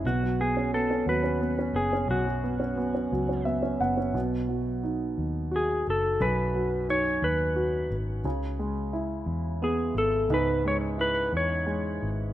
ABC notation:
X:1
M:6/8
L:1/16
Q:3/8=58
K:Bmix
V:1 name="Electric slide guitar"
F2 G2 A2 B4 G2 | F8 z4 | z8 G2 A2 | B4 c2 B4 z2 |
z8 G2 A2 | B2 c2 B2 c4 z2 |]
V:2 name="Grand piano"
z12 | z8 e2 f2 | z12 | z12 |
z12 | z12 |]
V:3 name="Grand piano"
B,, F, B, C B, C F, C B, C B, C | F,, F, B, C B, C F, C B, C B, C | B,,2 F,2 D4 F4 | F,,2 F,2 D4 F4 |
C,2 G,2 E4 B,4 | G,,2 G,2 E4 G,4 |]
V:4 name="Fingered electric bass" clef=bass
B,,,6 D,,4 F,,,2 | B,,,6 C,,4 F,,,2 | B,,,6 D,,4 F,,,2 | B,,,6 D,,4 G,,,2 |
C,,6 E,,4 G,,,2 | C,,6 E,,4 G,,,2 |]